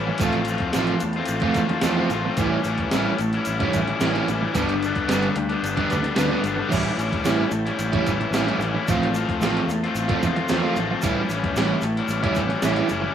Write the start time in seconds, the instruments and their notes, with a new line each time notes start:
Already playing: fingered electric bass A1, overdriven electric guitar A2 E3, transistor combo organ E4 A4 C#5 G5
0.07 overdriven electric guitar G3 C#4 E4, muted overdriven electric guitar stroke
0.18 fingered electric bass A1, overdriven electric guitar A2 F3, transistor combo organ F4 C5, kick, closed hi-hat, shaker
0.22 overdriven electric guitar A3 C4 F4
0.33 closed hi-hat
0.45 overdriven electric guitar F3 A3, closed hi-hat, shaker
0.50 overdriven electric guitar C4 F4
0.58 kick, closed hi-hat
0.73 fingered electric bass A1, overdriven electric guitar A2 F3 A3 C4 F4, snare, closed hi-hat, shaker
0.87 closed hi-hat
1.00 fingered electric bass E2, muted overdriven electric guitar stroke, closed hi-hat, shaker
1.13 overdriven electric guitar F4, closed hi-hat
1.18 overdriven electric guitar A3 C4
1.26 fingered electric bass A1, closed hi-hat, shaker
1.40 overdriven electric guitar F3 A3 F4, kick, closed hi-hat
1.45 overdriven electric guitar A3 C4
1.54 fingered electric bass E2, overdriven electric guitar F3 A3 C4, kick, closed hi-hat, shaker
1.59 overdriven electric guitar F4
1.69 muted overdriven electric guitar stroke, snare, closed hi-hat
1.81 fingered electric bass E2, overdriven electric guitar A2 F3 A3, snare, closed hi-hat, shaker
1.86 overdriven electric guitar C4 F4
1.98 overdriven electric guitar F3 A3 C4 F4
2.10 fingered electric bass A1, overdriven electric guitar F3, muted overdriven electric guitar stroke, closed hi-hat, shaker
2.15 overdriven electric guitar A3 C4 F4
2.25 overdriven electric guitar C4 F4, muted overdriven electric guitar stroke
2.29 overdriven electric guitar A3
2.34 fingered electric bass A1, transistor combo organ E4 C#5, kick, closed hi-hat, shaker
2.38 overdriven electric guitar A2 E3 G3 C#4 E4
2.64 fingered electric bass A1, overdriven electric guitar E3 G3 C#4, closed hi-hat, shaker
2.68 overdriven electric guitar E4
2.78 kick, closed hi-hat
2.91 fingered electric bass A1, overdriven electric guitar A2 E3 G3, snare, closed hi-hat, shaker
2.95 overdriven electric guitar C#4 E4
3.18 fingered electric bass A1, muted overdriven electric guitar stroke, closed hi-hat, shaker
3.33 overdriven electric guitar C#4 E4, closed hi-hat
3.37 overdriven electric guitar G3
3.45 fingered electric bass A1, closed hi-hat, shaker
3.60 overdriven electric guitar E3 G3 E4, kick, closed hi-hat
3.64 overdriven electric guitar G3 C#4
3.73 fingered electric bass A1, overdriven electric guitar E3 G3, kick, closed hi-hat, shaker
3.78 overdriven electric guitar C#4 E4
3.88 muted overdriven electric guitar stroke, closed hi-hat
4.00 fingered electric bass A1, overdriven electric guitar A2 E3 G3 C#4 E4, snare, closed hi-hat, shaker
4.04 overdriven electric guitar E3 G3 C#4 E4
4.14 overdriven electric guitar E3 G3 C#4 E4, closed hi-hat
4.19 overdriven electric guitar G3 C#4
4.28 fingered electric bass A1, overdriven electric guitar E3 G3, muted overdriven electric guitar stroke, closed hi-hat, shaker
4.33 overdriven electric guitar C#4 E4
4.41 overdriven electric guitar G3 C#4 E4, muted overdriven electric guitar stroke
4.55 fingered electric bass G1, overdriven electric guitar G2 D3 G3 B3, transistor combo organ D4 G4 B4, kick, closed hi-hat, shaker
4.59 overdriven electric guitar D4
4.69 closed hi-hat
4.83 overdriven electric guitar D3 G3 B3 D4, closed hi-hat, shaker
4.95 kick, closed hi-hat
5.09 fingered electric bass G1, overdriven electric guitar G2 D3 G3 B3 D4, snare, closed hi-hat, shaker
5.23 closed hi-hat
5.36 fingered electric bass D2, muted overdriven electric guitar stroke, closed hi-hat
5.49 overdriven electric guitar G3 B3 D4, closed hi-hat
5.63 fingered electric bass G1, closed hi-hat, shaker
5.77 overdriven electric guitar D3 G3 B3 D4, kick, closed hi-hat
5.90 fingered electric bass D2, overdriven electric guitar D3 G3 B3 D4, kick, closed hi-hat, shaker
6.02 muted overdriven electric guitar stroke, snare, closed hi-hat
6.16 fingered electric bass D2, overdriven electric guitar G2 D3 G3 B3 D4, snare, closed hi-hat, shaker
6.30 overdriven electric guitar D3 G3 B3 D4
6.43 fingered electric bass G1, overdriven electric guitar D3 G3 B3, muted overdriven electric guitar stroke, closed hi-hat, shaker
6.48 overdriven electric guitar D4
6.56 overdriven electric guitar D4, muted overdriven electric guitar stroke
6.61 overdriven electric guitar G3 B3
6.69 fingered electric bass A1, overdriven electric guitar A2 E3 G3 C#4 E4, transistor combo organ E4 A4 C#5, kick, crash, shaker
6.73 overdriven electric guitar E3 G3 C#4 E4
6.98 fingered electric bass A1, overdriven electric guitar E3 G3 C#4 E4, closed hi-hat, shaker
7.13 kick, closed hi-hat
7.24 fingered electric bass A1, overdriven electric guitar A2 E3 G3 C#4 E4, snare, closed hi-hat, shaker
7.51 fingered electric bass A1, muted overdriven electric guitar stroke, closed hi-hat, shaker
7.65 overdriven electric guitar G3 C#4 E4, closed hi-hat
7.79 fingered electric bass A1, closed hi-hat, shaker
7.93 overdriven electric guitar E3 G3 C#4 E4, kick, closed hi-hat
7.97 overdriven electric guitar G3
8.07 fingered electric bass A1, overdriven electric guitar E3 G3 C#4 E4, kick, closed hi-hat, shaker
8.20 muted overdriven electric guitar stroke, closed hi-hat
8.31 fingered electric bass A1, overdriven electric guitar A2 E3, snare, closed hi-hat, shaker
8.36 overdriven electric guitar G3 C#4 E4
8.46 overdriven electric guitar E3 G3 C#4 E4, closed hi-hat
8.51 overdriven electric guitar G3
8.58 fingered electric bass A1, overdriven electric guitar E3, muted overdriven electric guitar stroke, shaker
8.62 overdriven electric guitar G3 C#4 E4, closed hi-hat
8.74 overdriven electric guitar C#4 E4, muted overdriven electric guitar stroke
8.78 overdriven electric guitar G3
8.85 fingered electric bass A1, overdriven electric guitar A2, transistor combo organ F4 C5, kick, closed hi-hat, shaker
8.89 overdriven electric guitar F3 A3 C4 F4
9.03 closed hi-hat
9.14 overdriven electric guitar F3 A3 C4 F4, closed hi-hat, shaker
9.29 kick, closed hi-hat
9.40 fingered electric bass A1, overdriven electric guitar A2 F3, snare, closed hi-hat, shaker
9.44 overdriven electric guitar A3 C4 F4
9.57 closed hi-hat
9.68 fingered electric bass E2, muted overdriven electric guitar stroke, closed hi-hat, shaker
9.83 overdriven electric guitar A3 C4 F4, closed hi-hat
9.95 fingered electric bass A1, closed hi-hat, shaker
10.09 overdriven electric guitar F3 A3 C4 F4, kick, closed hi-hat
10.22 fingered electric bass E2, overdriven electric guitar F3 A3 C4 F4, kick, closed hi-hat, shaker
10.36 muted overdriven electric guitar stroke, closed hi-hat
10.48 fingered electric bass E2, overdriven electric guitar A2 F3 A3 C4, snare, closed hi-hat, shaker
10.53 overdriven electric guitar F4
10.64 overdriven electric guitar F3 A3 C4 F4
10.76 fingered electric bass A1, overdriven electric guitar F3 A3 C4 F4, muted overdriven electric guitar stroke, closed hi-hat, shaker
10.90 overdriven electric guitar A3 C4 F4, muted overdriven electric guitar stroke
11.02 fingered electric bass A1, overdriven electric guitar A2 E3 G3 C#4 E4, transistor combo organ E4 A4 C#5 G5, kick, closed hi-hat, shaker
11.29 fingered electric bass A1, overdriven electric guitar E3 G3 C#4 E4, closed hi-hat, shaker
11.44 kick, closed hi-hat
11.55 fingered electric bass A1, overdriven electric guitar A2 E3 G3 C#4 E4, snare, closed hi-hat, shaker
11.81 fingered electric bass A1, muted overdriven electric guitar stroke, closed hi-hat, shaker
11.97 overdriven electric guitar G3 C#4 E4, closed hi-hat
12.08 fingered electric bass A1, closed hi-hat, shaker
12.22 overdriven electric guitar E3 G3 C#4 E4, kick, closed hi-hat
12.35 fingered electric bass A1, overdriven electric guitar E3 G3 C#4 E4, kick, closed hi-hat, shaker
12.49 muted overdriven electric guitar stroke, snare, closed hi-hat
12.62 fingered electric bass A1, overdriven electric guitar A2 E3 G3 C#4 E4, snare, closed hi-hat, shaker
12.74 overdriven electric guitar E3 G3 C#4 E4, closed hi-hat
12.88 fingered electric bass F#1, overdriven electric guitar E3 G3 C#4 E4, muted overdriven electric guitar stroke, closed hi-hat, shaker
13.01 overdriven electric guitar C#4 E4, muted overdriven electric guitar stroke
13.06 overdriven electric guitar G3